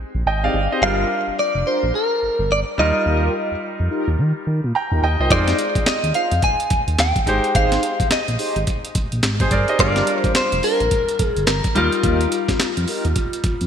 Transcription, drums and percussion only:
5.30 kick, closed hi-hat
5.48 snare, closed hi-hat
5.59 closed hi-hat
5.75 kick, closed hi-hat
5.86 snare, clap, closed hi-hat
6.04 closed hi-hat
6.14 closed hi-hat
6.31 closed hi-hat
6.42 kick, closed hi-hat
6.60 closed hi-hat
6.70 kick, closed hi-hat
6.88 closed hi-hat
6.98 snare, clap, closed hi-hat
7.16 kick, closed hi-hat
7.27 closed hi-hat
7.44 closed hi-hat
7.55 kick, closed hi-hat
7.72 snare, closed hi-hat
7.83 closed hi-hat
8.00 kick, closed hi-hat
8.11 snare, clap, closed hi-hat
8.28 closed hi-hat
8.39 open hi-hat
8.56 closed hi-hat
8.67 kick, closed hi-hat
8.85 closed hi-hat
8.95 kick, closed hi-hat
9.12 closed hi-hat
9.23 snare, clap, closed hi-hat
9.40 kick, closed hi-hat
9.51 kick, closed hi-hat
9.68 closed hi-hat
9.79 kick, closed hi-hat
9.96 snare, closed hi-hat
10.07 closed hi-hat
10.24 kick, closed hi-hat
10.35 snare, clap, closed hi-hat
10.52 closed hi-hat
10.63 open hi-hat
10.80 closed hi-hat
10.91 kick, closed hi-hat
11.09 closed hi-hat
11.19 kick, closed hi-hat
11.37 closed hi-hat
11.47 snare, clap, closed hi-hat
11.64 kick, closed hi-hat
11.76 closed hi-hat
11.92 closed hi-hat
12.03 kick, closed hi-hat
12.21 closed hi-hat
12.32 closed hi-hat
12.48 kick, snare, closed hi-hat
12.60 snare, clap, closed hi-hat
12.77 closed hi-hat
12.88 open hi-hat
13.05 closed hi-hat
13.16 kick, closed hi-hat
13.33 closed hi-hat
13.44 kick, closed hi-hat
13.61 closed hi-hat

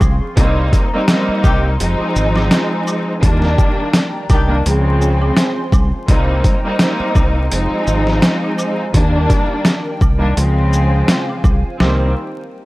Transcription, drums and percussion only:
0.01 kick, high woodblock, shaker
0.37 kick, closed hi-hat, shaker
0.73 kick, closed hi-hat, shaker
1.08 snare, closed hi-hat, shaker
1.44 kick, high woodblock, shaker
1.80 closed hi-hat, shaker
2.16 shaker
2.36 snare, high woodblock
2.51 snare, closed hi-hat, shaker
2.87 high woodblock, shaker
3.23 kick, closed hi-hat, shaker
3.42 snare
3.58 kick, shaker
3.94 snare, closed hi-hat, shaker
4.30 kick, closed hi-hat, high woodblock, shaker
4.66 closed hi-hat, shaker
5.01 shaker
5.22 high woodblock
5.37 snare, closed hi-hat, shaker
5.72 kick, high woodblock, shaker
6.08 kick, closed hi-hat, shaker
6.44 kick, closed hi-hat, shaker
6.79 snare, closed hi-hat, shaker
7.15 kick, high woodblock, shaker
7.51 closed hi-hat, shaker
7.87 shaker
8.07 snare
8.22 snare, closed hi-hat, shaker
8.43 high woodblock
8.58 high woodblock, shaker
8.94 kick, closed hi-hat, shaker
9.30 kick, closed hi-hat, shaker
9.65 snare, closed hi-hat, shaker
10.01 kick, high woodblock, shaker
10.37 closed hi-hat, shaker
10.73 shaker
11.08 snare, closed hi-hat, shaker
11.29 high woodblock
11.44 kick, high woodblock, shaker
11.80 snare, high woodblock

